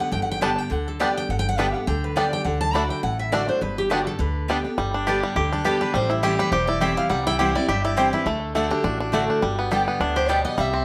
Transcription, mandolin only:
0.41 0.52 B3 medium
0.41 0.52 G4 medium
0.41 0.52 D5 medium
0.41 0.52 G5 medium
1.00 1.10 B3 medium
1.00 1.10 G4 medium
1.00 1.10 D5 medium
1.00 1.11 G5 loud
1.58 1.68 B3 medium
1.58 1.68 G4 medium
1.58 1.69 D5 medium
1.58 1.69 G5 loud
2.16 2.26 B3 medium
2.16 2.27 G4 loud
2.16 2.27 D5 medium
2.16 2.27 G5 loud
2.74 2.84 A3 medium
2.74 2.85 F#4 medium
2.74 2.85 D5 medium
2.74 2.85 F#5 loud
3.32 3.43 A3 medium
3.32 3.43 F#4 medium
3.32 3.43 D5 loud
3.32 3.43 F#5 loud
3.90 4.01 B3 medium
3.90 4.01 G4 medium
3.90 4.01 D5 medium
3.90 4.01 G5 medium
4.48 4.59 B3 medium
4.48 4.59 G4 medium
4.48 4.59 D5 medium
4.48 4.60 G5 medium
5.07 5.17 B3 medium
5.07 5.18 G4 medium
5.07 5.18 D5 medium
5.07 5.18 A5 medium
5.64 5.75 B3 medium
5.64 5.75 G4 medium
5.64 5.76 D5 medium
5.64 5.76 A5 loud
6.23 6.33 A3 medium
6.23 6.34 E4 medium
6.23 6.34 C5 medium
6.23 6.34 G5 loud
6.81 6.92 A3 loud
6.81 6.92 E4 medium
6.81 6.92 C5 loud
6.81 6.92 G5 loud
7.39 7.50 C4 medium
7.39 7.50 E4 medium
7.39 7.50 C5 medium
7.39 7.50 G5 loud
7.97 8.07 C4 medium
7.97 8.08 E4 loud
7.97 8.08 C5 loud
7.97 8.08 G5 loud
8.55 8.66 A3 medium
8.55 8.66 F#4 medium
8.55 8.66 D5 medium
8.55 8.66 F#5 medium
9.13 9.23 A3 medium
9.13 9.24 F#4 medium
9.13 9.24 D5 loud
9.13 9.24 F#5 loud
9.71 9.81 B3 medium
9.71 9.81 G4 medium
9.71 9.82 D5 medium
9.71 9.82 G5 medium
10.29 10.39 B3 medium
10.29 10.39 G4 medium
10.29 10.39 D5 loud
10.29 10.40 G5 loud

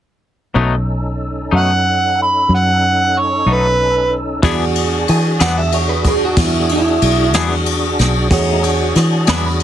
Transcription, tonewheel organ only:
0.56 4.41 C#4 soft
0.56 4.41 D#4 soft
0.56 4.41 A4 soft
4.45 8.28 D4 medium
4.45 8.28 F#4 medium
4.45 8.28 G#4 medium
8.32 8.64 A3 medium
8.32 8.64 D#4 medium
8.32 8.61 G#4 medium
8.62 9.63 D4 medium
8.62 9.63 F#4 medium
8.62 9.63 G#4 medium

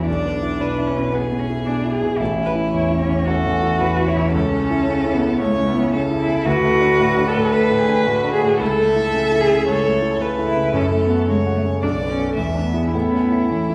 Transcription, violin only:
0.07 0.62 D5 soft
0.61 1.16 B4 soft
1.14 2.19 G#4 medium
2.20 2.28 A4 soft
2.46 2.54 B4 soft
2.71 3.29 C#5 soft
3.28 3.82 A4 medium
3.80 4.09 B4 soft
4.07 4.32 C#5 soft
4.33 5.37 A4 medium
5.41 5.92 C#5 medium
5.93 6.48 A4 medium
6.46 7.54 B4 medium
7.53 7.81 A4 medium
7.79 8.06 G#4 medium
8.07 8.61 F#4 medium
8.60 8.85 E4 medium
8.86 9.65 E5 medium
9.68 10.23 C#5 medium
10.22 10.77 B4 medium
10.75 11.28 A4 medium
11.29 11.82 C#5 soft
11.83 12.36 D5 medium
12.37 12.92 E5 soft
12.92 13.75 E4 soft

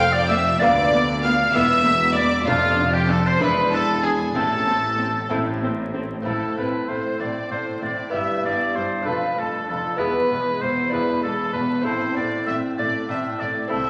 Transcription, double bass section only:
0.00 0.50 F1 medium
0.60 1.43 D2 loud
1.54 2.36 E1 loud
2.47 3.30 F1 loud
3.41 4.25 E1 medium
4.36 5.20 A1 medium
5.30 6.15 A1 medium
6.26 6.34 A1 soft
6.57 6.65 A1 soft
6.89 6.97 A1 soft
7.20 7.28 A1 soft
7.51 7.59 A1 soft
7.84 7.92 A1 soft
8.15 8.23 G1 soft
8.45 8.53 G1 soft
8.77 8.85 G1 soft
9.08 9.16 F1 medium
9.39 9.47 F1 soft
9.70 9.78 F1 soft
10.01 10.09 E1 soft
10.32 10.40 E1 soft
10.63 10.71 E1 soft
10.93 11.01 E1 soft
11.24 11.32 E1 medium
11.55 11.63 E1 medium
11.87 11.95 A1 medium
12.18 12.26 A1 medium
12.50 12.58 A1 medium
12.80 12.88 A1 medium
13.11 13.19 A1 medium
13.41 13.49 A1 medium
13.73 13.81 C2 medium

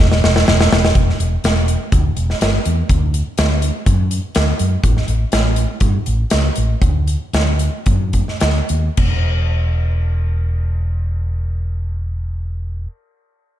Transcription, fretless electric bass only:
0.00 0.19 E1 loud
0.24 0.44 E1 medium
0.48 0.68 E1 medium
0.72 0.92 E1 medium
0.95 1.11 E1 medium
1.20 1.35 E1 medium
1.44 1.75 E1 medium
1.93 2.08 D2 medium
2.16 2.32 E1 medium
2.41 2.57 G1 medium
2.66 2.81 E2 medium
2.90 3.21 D2 medium
3.38 3.69 D2 medium
3.87 4.18 F#2 medium
4.36 4.51 D2 medium
4.60 4.75 F#2 medium
4.84 4.99 A1 medium
5.08 5.23 A1 medium
5.33 5.64 A1 medium
5.81 5.97 G2 medium
6.07 6.23 A1 medium
6.33 6.48 C#2 medium
6.57 6.74 A1 medium
6.82 7.15 D2 medium
7.33 7.67 D2 medium
7.87 8.22 F#2 medium
8.42 8.60 D2 medium
8.70 8.88 D#2 medium
8.98 12.85 E1 medium

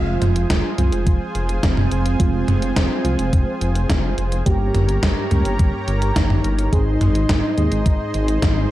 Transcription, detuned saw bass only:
0.00 0.17 F1 loud
0.21 0.46 F1 medium
0.50 0.62 F1 medium
0.78 0.90 C2 medium
0.92 1.04 F1 medium
1.06 1.19 F1 medium
1.35 1.59 F1 medium
1.63 1.87 F1 medium
1.91 2.16 F1 medium
2.20 2.44 F1 loud
2.48 2.72 F1 medium
2.76 2.88 F1 medium
3.04 3.17 C2 medium
3.19 3.31 F1 medium
3.33 3.45 F1 medium
3.61 3.85 F1 medium
3.90 4.14 F1 medium
4.18 4.42 F1 medium
4.46 4.70 G1 loud
4.74 4.99 G1 medium
5.03 5.15 G1 medium
5.31 5.43 C#2 medium
5.45 5.57 G1 medium
5.59 5.71 G1 medium
5.88 6.12 G1 medium
6.16 6.40 G1 medium
6.44 6.68 G1 medium
6.73 6.97 G#1 loud
7.01 7.25 G#1 medium
7.29 7.41 G#1 medium
7.58 7.70 D#2 medium
7.72 7.84 G#1 medium
7.86 7.98 G#1 medium
8.14 8.38 G#1 medium
8.42 8.67 G#1 medium

